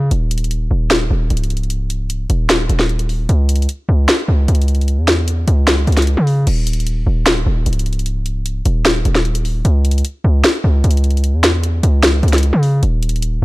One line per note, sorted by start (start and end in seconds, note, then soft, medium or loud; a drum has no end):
0.11 0.68 D#1 loud
0.11 closed hi-hat medium
0.31 closed hi-hat medium
0.38 closed hi-hat medium
0.44 closed hi-hat soft
0.51 closed hi-hat medium
0.71 1.09 D#1 loud
0.91 snare loud
0.91 closed hi-hat medium
1.11 1.30 D#1 loud
1.30 2.26 C#1 loud
1.30 closed hi-hat medium
1.37 closed hi-hat medium
1.44 closed hi-hat medium
1.50 closed hi-hat medium
1.57 closed hi-hat soft
1.63 closed hi-hat soft
1.70 closed hi-hat medium
1.90 closed hi-hat medium
2.10 closed hi-hat medium
2.30 2.68 D#1 loud
2.30 closed hi-hat medium
2.50 snare loud
2.50 closed hi-hat medium
2.69 3.27 D#1 loud
2.69 closed hi-hat medium
2.79 snare medium
2.89 closed hi-hat soft
2.99 closed hi-hat medium
3.09 open hi-hat medium
3.29 3.67 C#2 loud
3.29 closed hi-hat medium
3.49 closed hi-hat medium
3.56 closed hi-hat medium
3.62 closed hi-hat medium
3.69 closed hi-hat medium
3.89 4.08 C#2 loud
4.08 snare loud
4.08 closed hi-hat medium
4.28 4.47 C#2 loud
4.48 4.99 C#2 loud
4.48 closed hi-hat medium
4.55 closed hi-hat medium
4.62 closed hi-hat medium
4.68 closed hi-hat medium
4.75 closed hi-hat soft
4.81 closed hi-hat soft
4.88 closed hi-hat medium
4.98 5.45 E2 loud
5.08 snare loud
5.08 closed hi-hat medium
5.28 closed hi-hat medium
5.48 5.86 C#2 loud
5.48 closed hi-hat medium
5.67 snare loud
5.67 closed hi-hat medium
5.87 6.16 C#2 loud
5.87 closed hi-hat soft
5.92 closed hi-hat medium
5.97 snare medium
5.97 closed hi-hat medium
6.02 closed hi-hat medium
6.07 closed hi-hat medium
6.17 6.46 C#3 loud
6.27 open hi-hat medium
6.47 7.04 D#1 loud
6.47 closed hi-hat medium
6.47 crash loud
6.67 closed hi-hat medium
6.73 closed hi-hat medium
6.80 closed hi-hat soft
6.87 closed hi-hat medium
7.07 7.45 D#1 loud
7.26 snare loud
7.26 closed hi-hat medium
7.46 7.65 D#1 loud
7.66 8.62 C#1 loud
7.66 closed hi-hat medium
7.73 closed hi-hat medium
7.79 closed hi-hat medium
7.86 closed hi-hat medium
7.93 closed hi-hat soft
7.99 closed hi-hat soft
8.06 closed hi-hat medium
8.26 closed hi-hat medium
8.46 closed hi-hat medium
8.65 9.04 D#1 loud
8.65 closed hi-hat medium
8.85 snare loud
8.85 closed hi-hat medium
9.05 9.62 D#1 loud
9.05 closed hi-hat medium
9.15 snare medium
9.25 closed hi-hat soft
9.35 closed hi-hat medium
9.45 open hi-hat medium
9.65 10.03 C#2 loud
9.65 closed hi-hat medium
9.85 closed hi-hat medium
9.91 closed hi-hat medium
9.98 closed hi-hat medium
10.05 closed hi-hat medium
10.24 10.43 C#2 loud
10.44 snare loud
10.44 closed hi-hat medium
10.64 10.83 C#2 loud
10.84 11.35 C#2 loud
10.84 closed hi-hat medium
10.91 closed hi-hat medium
10.97 closed hi-hat medium
11.04 closed hi-hat medium
11.11 closed hi-hat soft
11.17 closed hi-hat soft
11.24 closed hi-hat medium
11.34 11.81 E2 loud
11.44 snare loud
11.44 closed hi-hat medium
11.63 closed hi-hat medium
11.83 12.21 C#2 loud
11.83 closed hi-hat medium
12.03 snare loud
12.03 closed hi-hat medium
12.23 12.52 C#2 loud
12.23 closed hi-hat soft
12.28 closed hi-hat medium
12.33 snare medium
12.33 closed hi-hat medium
12.38 closed hi-hat medium
12.43 closed hi-hat medium
12.53 12.81 C#3 loud
12.63 open hi-hat medium
12.83 13.40 D#1 loud
12.83 closed hi-hat medium
13.03 closed hi-hat medium
13.09 closed hi-hat medium
13.16 closed hi-hat medium
13.22 closed hi-hat medium